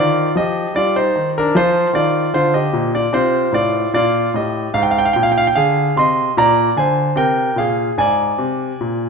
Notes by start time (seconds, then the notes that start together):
Already playing: D#3 D5
0.00 F4
0.36 F3 G4 D#5
0.74 G3 F4 D5
0.96 D#4 C5
1.16 D#3
1.38 D4 A#4
1.55 F3 F4 C5
1.93 D#3 F4 D5
2.34 D3 F4 C5
2.54 G4 D#5
2.73 A#2
2.95 F4 D5
3.13 C3 F4 C5
3.52 A2 F4 D5
3.94 A#2 F4 D5
4.34 A2 G4 D#5
4.74 G#2 F5
4.83 G5
4.91 F5
4.98 G5
5.05 F5
5.13 A#2 G5
5.23 F5
5.32 G5
5.38 F5
5.47 G5
5.55 D3 G#4 F5
5.96 C3 D#5 C6
6.37 A#2 D5 A#5
6.76 D3 C5 G#5
7.16 C3 A#4 G5
7.56 A#2 G#4 F5
7.98 G#2 D5 G#5
8.38 C3
8.81 A#2